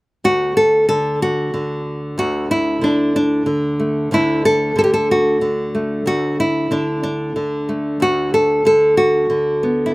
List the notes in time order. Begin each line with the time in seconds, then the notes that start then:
0.24 D2 F#4
0.57 A4
0.89 D3 A4
1.22 F#4
1.54 D3
2.18 D2 F#4
2.51 E4
2.81 D3 D4
3.16 D4
3.46 D3
3.80 A3
4.11 D2 D3 A3 D4 E4
4.45 A4
4.76 D3 A4
4.84 G4
4.94 A4
5.11 F#4
5.41 D3
5.75 A3
6.06 D2 F#4
6.40 E4
6.71 D3 D4
7.03 D4
7.36 D3
7.69 A3
8.00 D2 F#4
8.34 A4
8.65 D3 A4
8.97 F#4
9.30 D3
9.63 B3
9.86 E4